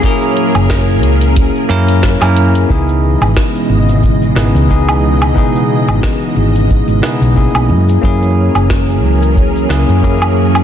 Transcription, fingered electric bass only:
X:1
M:4/4
L:1/16
Q:"Swing 16ths" 1/4=90
K:C#dor
V:1 name="Fingered electric bass" clef=bass
z3 F,,,3 C,,3 z F,,3 F,,3 | C,,3 G,,, z2 G,,,4 G,,, C,,4- C,, | z3 G,,, z2 G,,,3 G,,, z B,,,2 B,,, F,,2 | F,,3 F,,,3 C,,4 C,, F,,4- F,, |]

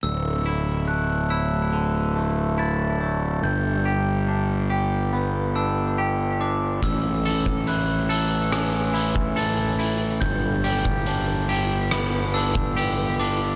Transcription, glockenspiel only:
X:1
M:4/4
L:1/8
Q:1/4=71
K:Glyd
V:1 name="Glockenspiel"
e'2 f' e'2 z a'2 | g'2 z3 e'2 d' | e'2 f' e'2 z a'2 | g'2 z3 e'2 d' |]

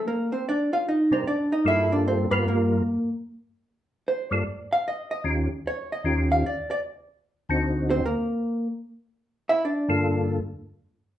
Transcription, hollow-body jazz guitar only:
X:1
M:4/4
L:1/8
Q:"Swing" 1/4=150
K:Cmix
V:1 name="Hollow-body jazz guitar"
[B,B] [Cc] [Dd] [Ff] [_E_e] [Cc] [Dd] [Ee] | [Ee] [Dd] [Cc] [=B,=B] [_B,_B]3 z | z4 c d2 f | _e e z2 _d e2 f |
d d z4 z [Cc] | [B,B]3 z4 [Ee] | [Dd]3 z4 z |]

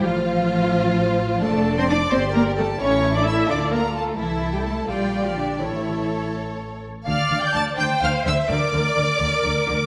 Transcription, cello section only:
X:1
M:6/8
L:1/16
Q:3/8=85
K:F
V:1 name="Cello section" clef=bass
F,12 | [K:Bblyd] A,3 C D2 C2 B,2 A,2 | ^C3 D E2 D2 B,2 A,2 | E,3 G, A,2 G,3 F, D,2 |
E,6 z6 | D,2 D,2 D,2 D,2 D,2 D,2 | D,2 D,2 D,2 D,2 D,2 D,2 |]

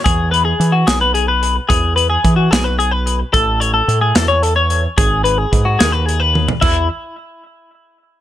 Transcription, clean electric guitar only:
X:1
M:6/8
L:1/16
Q:3/8=73
K:E
V:1 name="Clean electric guitar"
G2 B G2 F G B G B2 z | G2 B G2 F G B G B2 z | A2 c A2 G A c A c2 z | G2 B G2 F G B G B2 z |
E2 z8 z2 |]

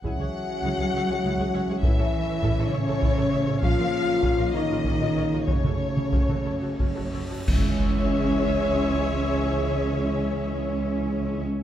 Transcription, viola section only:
X:1
M:6/8
L:1/16
Q:3/8=63
K:C#m
V:1 name="Viola section"
[EG] [Gc] z2 [EG] [Gc] [ce] [Gc] [EG] [Gc] [ce] [Gc] | [EA] [Ac] z2 [EA] [Ac] [ce] [Ac] [EA] [Ac] [ce] [Ac] | [C^E] [E^A] z2 [CE] [EA] [Ac] [EA] [CE] [EA] [Ac] [EA] | [CF] [FA] z2 [CF] [FA] [Ac] [FA] [CF] [FA] [Ac] [FA] |
[Ge]12- | [Ge]12 |]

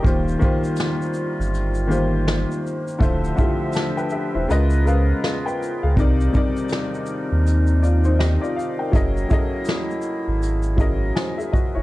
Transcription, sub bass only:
X:1
M:4/4
L:1/16
Q:"Swing 16ths" 1/4=81
K:Cm
V:1 name="Sub bass" clef=bass
E,,,2 z4 z G,,,6 z3 | D,,,2 z4 z =E,,, _D,,4 z3 D,, | C,,2 z4 z E,,6 z3 | _G,,,2 z4 z A,,,4- A,,, z3 G,,, |]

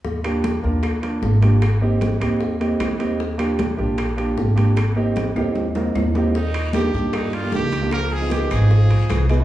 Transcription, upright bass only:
X:1
M:4/4
L:1/8
Q:1/4=152
K:Eb
V:1 name="Upright bass" clef=bass
E,,3 E,,3 A,,,2- | A,,,3 E,,3 E,,2- | E,,3 B,,,3 A,,,2- | A,,,3 E,,3 E,,2- |
E,,3 G,,3 _D,,2- | _D,,3 A,,,2 B,,, C,,2 |]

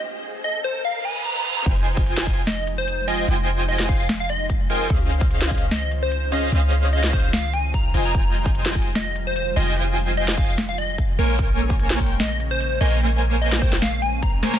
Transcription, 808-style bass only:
X:1
M:4/4
L:1/8
Q:"Swing 16ths" 1/4=148
K:Fm
V:1 name="808-style bass" clef=bass
z8 | F,,,8 | F,,,8 | D,,8 |
D,,6- D,, F,,,- | F,,,6- F,,, F,,,- | F,,,6- F,,, B,,,- | B,,,6- B,,, B,,,- |
B,,,6- B,,, z |]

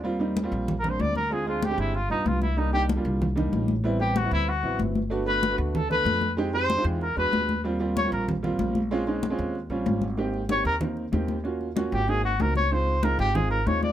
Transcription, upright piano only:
X:1
M:4/4
L:1/16
Q:1/4=189
K:Eb
V:1 name="Upright piano"
[G,B,CF] z [G,B,CE]2 z [G,B,CF]3 z2 [G,B,CD]4 z2 | [A,CDF] z [A,CDA]2 z [A,CDG]3 z2 [G,=B,DF]4 z2 | [G,B,DE] z [G,B,DE]2 z [G,B,DF]3 z2 [G,B,DE]4 z2 | [G,=B,C=E] z [G,B,CG]2 z [G,B,CE]3 z2 [^F,B,CE]4 z2 |
[=A,=B,D^F] z [A,B,DF]2 z [A,B,DF]3 z2 [A,B,D=A]4 z2 | [A,CEG] z [A,CEG]2 z [A,CEF]3 z2 [^G,=B,D^F]4 z2 | [G,B,CF] z [G,B,CF]2 z [G,B,CF]3 z2 [G,B,CF]4 z2 | [A,C_DF] z [A,CDE]2 z [A,CDF]3 z2 [G,CDF]4 z2 |
[K:Ab] [B,CEG]3 z [B,CEG]3 z [B,CEB]3 z [B,CEG]3 z | [B,DF_G]3 z [B,DFG]3 z [B,CEG]3 z [B,CEG]3 z | [A,CEF]3 z [A,CEF]3 z [A,CEF]3 z [A,CEF]3 z |]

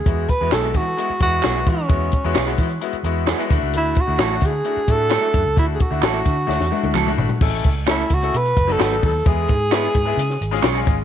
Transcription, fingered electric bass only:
X:1
M:4/4
L:1/16
Q:1/4=130
K:Emix
V:1 name="Fingered electric bass" clef=bass
E,,2 z E,, B,,,2 E,2 z2 E,,2 B,,,2 E,2 | E,,2 z E,, B,,,2 E,2 z2 E,,3 z D,, C,, | D,,2 z D,, A,,,2 D,2 z2 A,,3 z F,, C,, | D,,2 z D,, A,,,2 D,2 D,, E,, z D,, C,,2 G,,, z |
A,,,2 C,,4 C,,2 B,,2 F,,,2 G,,,2 ^D,,2 | E,,2 G,,4 G,,2 C,2 G,,,2 B,,,2 G,,,2 |]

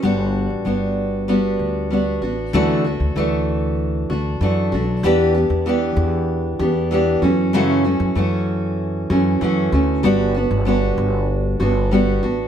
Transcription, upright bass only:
X:1
M:4/4
L:1/16
Q:1/4=96
K:D
V:1 name="Upright bass" clef=bass
G,,,3 z G,,,6 D,,4 A,,,2 | D,,3 D,, D,,6 D,,2 F,,2 B,,,2 | E,,3 E,,3 E,,4 E,,4 F,,2- | F,,3 F,, F,,6 F,,2 F,,2 D,,2 |
G,,,3 G,,,3 G,,,4 G,,,4 A,,,2 |]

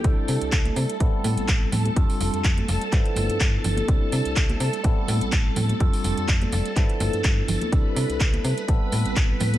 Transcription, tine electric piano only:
X:1
M:4/4
L:1/8
Q:"Swing 16ths" 1/4=125
K:C
V:1 name="Tine electric piano"
[G,CDEA]4 [G,B,CEA]4 | [G,CDFA]4 [F,B,DEA]4 | [G,CDEA]4 [G,B,CEA]4 | [G,CDFA]4 [F,B,DEA]4 |
[G,CDEA]4 [G,B,CEA]4 |]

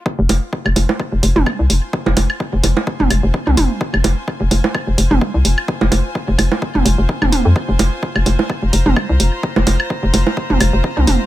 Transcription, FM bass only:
X:1
M:4/4
L:1/16
Q:"Swing 16ths" 1/4=128
K:Fm
V:1 name="FM bass" clef=bass
z F,,, F,,, z2 F,,, F,,, z2 F,,, F,,, F,,, z C,, F,,, z | z F,,, F,,, z2 F,,, F,,, z2 F,,, F,,, F,,, z C,, F,,, z | z F,,, F,,, z2 F,,, F,,, z2 F,,, F,,, F,,, z C,, F,,, z | z F,,, F,,, z2 F,,, F,,, z2 F,,, F,,, F,,, z F,,, E,,, F,, |
z F,,, F,,, z2 F,,, F,,, z2 F,,, F,,, F,,, z C,, F,,, z | z F,,, F,,, z2 F,,, F,,, z2 F,,, F,,, F,,, z C,, F,,, z |]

